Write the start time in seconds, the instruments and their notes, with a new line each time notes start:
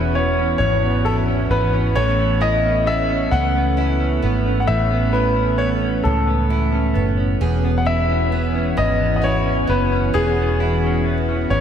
Already playing: fingered electric bass E1, clean electric guitar E2 B3 C#4 E4, analog synth pad E3 B3 C#4 F#4 G#5, steel-string acoustic guitar E3 B3 C#4 G#4, grand piano B4
0.15 clean electric guitar B3, grand piano C#5
0.39 clean electric guitar C#4
0.58 fingered electric bass G#1, clean electric guitar E2, steel-string acoustic guitar B3, grand piano C#5
0.83 clean electric guitar B3
1.05 steel-string acoustic guitar C#4, clean electric guitar E4, grand piano A4
1.28 clean electric guitar C#4
1.50 fingered electric bass G#1, steel-string acoustic guitar B3, clean electric guitar B3, grand piano B4
1.73 clean electric guitar C#4
1.95 fingered electric bass A1, clean electric guitar A2, steel-string acoustic guitar E3 A4, analog synth pad A3 B3, grand piano C#5
2.20 clean electric guitar B3
2.41 steel-string acoustic guitar C#4, clean electric guitar E4, grand piano D#5
2.64 clean electric guitar C#4
2.86 clean electric guitar B3, steel-string acoustic guitar A4, grand piano E5
3.10 clean electric guitar C#4
3.31 fingered electric bass C#2, steel-string acoustic guitar B3, grand piano F#5
3.55 clean electric guitar B3
3.77 steel-string acoustic guitar C#4, clean electric guitar E4
4.00 clean electric guitar C#4
4.22 fingered electric bass G#1, steel-string acoustic guitar B3, clean electric guitar B3
4.46 clean electric guitar C#4
4.60 grand piano F#5
4.67 fingered electric bass A1, clean electric guitar A2, steel-string acoustic guitar E3 A4, grand piano E5
4.91 clean electric guitar B3
5.13 steel-string acoustic guitar C#4, clean electric guitar E4, grand piano B4
5.36 clean electric guitar C#4
5.58 clean electric guitar B3, steel-string acoustic guitar A4, grand piano C#5
5.82 clean electric guitar C#4
6.03 fingered electric bass C#2, clean electric guitar A2, steel-string acoustic guitar B3, grand piano A4
6.27 clean electric guitar B3
6.50 steel-string acoustic guitar C#4, clean electric guitar E4
6.72 clean electric guitar C#4
6.94 fingered electric bass F#1, clean electric guitar B3, steel-string acoustic guitar B3
7.18 clean electric guitar C#4
7.41 fingered electric bass E1, clean electric guitar E2, analog synth pad E3 C#4 F#4 G#5, steel-string acoustic guitar B3 G#4
7.65 clean electric guitar B3
7.78 grand piano F#5
7.85 steel-string acoustic guitar C#4, clean electric guitar E4, grand piano E5
8.09 clean electric guitar C#4
8.32 clean electric guitar B3, steel-string acoustic guitar G#4
8.55 clean electric guitar C#4
8.77 fingered electric bass G#1, clean electric guitar E2, steel-string acoustic guitar B3, grand piano D#5
9.00 clean electric guitar B3
9.16 grand piano D#5
9.22 steel-string acoustic guitar C#4, clean electric guitar E4, grand piano C#5
9.46 clean electric guitar C#4
9.67 fingered electric bass F#1, steel-string acoustic guitar B3, clean electric guitar B3, grand piano B4
9.92 clean electric guitar C#4
10.14 fingered electric bass E1, clean electric guitar E2, steel-string acoustic guitar B3 G#4, grand piano G#4
10.39 clean electric guitar B3
10.60 steel-string acoustic guitar C#4, clean electric guitar E4
10.84 clean electric guitar C#4
11.06 clean electric guitar B3
11.29 clean electric guitar C#4
11.50 fingered electric bass G#1, clean electric guitar E2, steel-string acoustic guitar B3, grand piano C#5